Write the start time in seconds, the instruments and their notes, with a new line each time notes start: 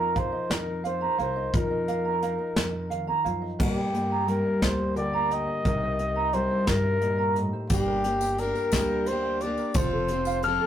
Already playing: upright bass F2, steel-string acoustic guitar F3 A#3 D#4, ukulele A#4 D#5 F5 A#5, trumpet A#4
0.15 steel-string acoustic guitar A#4, trumpet C5, ukulele F5, kick, closed hi-hat
0.32 ukulele D#5
0.50 upright bass F2, steel-string acoustic guitar D#4, ukulele A#4, trumpet A#4, snare, closed hi-hat
0.84 steel-string acoustic guitar D#4, trumpet C5, ukulele F5, closed hi-hat
1.01 ukulele A#5
1.18 upright bass C2, steel-string acoustic guitar A#4, trumpet C5, ukulele F5, closed hi-hat
1.36 ukulele D#5
1.53 upright bass F2, steel-string acoustic guitar F3 D#4, ukulele A#4, trumpet A#4, kick, closed hi-hat
1.71 ukulele D#5
1.88 steel-string acoustic guitar D#4, ukulele F5, closed hi-hat
2.05 ukulele A#5
2.22 steel-string acoustic guitar D#4, ukulele F5, closed hi-hat
2.39 ukulele D#5
2.56 upright bass F2, ukulele A#4, snare, closed hi-hat
2.90 steel-string acoustic guitar D#3, ukulele F5, closed hi-hat
3.07 ukulele A#5
3.24 upright bass F#2, steel-string acoustic guitar F3, ukulele F5, closed hi-hat
3.42 ukulele D#5
3.59 steel-string acoustic guitar G2 A#3, upright bass G2, trumpet G4, ukulele A#4, kick, crash
3.77 ukulele D5
3.93 steel-string acoustic guitar A#3, ukulele G5, closed hi-hat
4.11 ukulele A#5
4.27 steel-string acoustic guitar G3 A#3, trumpet A#4, ukulele G5, closed hi-hat
4.45 ukulele D5
4.62 upright bass D2, steel-string acoustic guitar A#3, ukulele A#4, trumpet C5, kick, snare, closed hi-hat
4.95 steel-string acoustic guitar D3 A#4, trumpet D5, ukulele G5, closed hi-hat
5.13 ukulele A#5
5.30 trumpet D#5, ukulele G5, closed hi-hat
5.47 ukulele D5
5.65 upright bass C2, steel-string acoustic guitar C3 D#4 A#4, ukulele A#4, kick, closed hi-hat
5.82 ukulele C5
5.99 steel-string acoustic guitar D#4, ukulele D#5, closed hi-hat
6.16 ukulele A#5
6.33 steel-string acoustic guitar G3 A#4, trumpet C5, ukulele D#5, closed hi-hat
6.50 ukulele C5
6.67 upright bass G2, ukulele A#4, trumpet A#4, kick, snare, closed hi-hat
7.01 steel-string acoustic guitar A#2, ukulele D#5, closed hi-hat
7.18 ukulele A#5
7.36 steel-string acoustic guitar A2, ukulele D#5, closed hi-hat
7.53 ukulele C5
7.70 upright bass G1, steel-string acoustic guitar G3 A#3 D4 G4, ukulele G4, trumpet G4, kick, closed hi-hat, tambourine
7.87 ukulele A#4
8.04 steel-string acoustic guitar A#3 D4 G4, ukulele D5, closed hi-hat
8.21 ukulele G5, tambourine
8.38 steel-string acoustic guitar G3 A#3 D4, trumpet A#4, ukulele D5, closed hi-hat, tambourine
8.42 steel-string acoustic guitar G4
8.55 ukulele A#4, tambourine
8.72 upright bass D2, steel-string acoustic guitar D4 G4, ukulele G4, kick, snare, closed hi-hat, tambourine
8.77 steel-string acoustic guitar G3 A#3
9.06 steel-string acoustic guitar G3, trumpet C5, ukulele D5, closed hi-hat
9.10 steel-string acoustic guitar A#3 D4 G4
9.23 ukulele G5
9.41 steel-string acoustic guitar D4 G4, ukulele D5, trumpet D5, closed hi-hat
9.46 steel-string acoustic guitar A#3
9.58 ukulele A#4, tambourine
9.74 upright bass F1, steel-string acoustic guitar F3 C4 F4, ukulele F4, trumpet C5, kick, closed hi-hat, tambourine
9.78 steel-string acoustic guitar A4
9.92 ukulele A4
10.08 steel-string acoustic guitar F4 A4, ukulele C5, closed hi-hat, tambourine
10.13 steel-string acoustic guitar C4
10.25 ukulele F5, tambourine
10.43 steel-string acoustic guitar F3 C4, trumpet A4, ukulele C5, glockenspiel F6, closed hi-hat
10.48 steel-string acoustic guitar F4 A4
10.60 ukulele A4